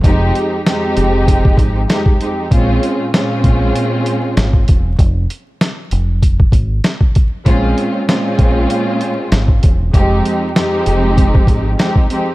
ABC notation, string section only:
X:1
M:4/4
L:1/8
Q:"Swing 16ths" 1/4=97
K:Bbdor
V:1 name="String section"
[F,,A,CEG]2 [F,,A,CEG]4 [F,,A,CEG] [F,,A,CEG] | [B,,A,CDF]2 [B,,A,CDF]4- [B,,A,CDF] z | z8 | [B,,A,CDF]2 [B,,A,CDF]4- [B,,A,CDF] z |
[F,,A,CEG]2 [F,,A,CEG]4 [F,,A,CEG] [F,,A,CEG] |]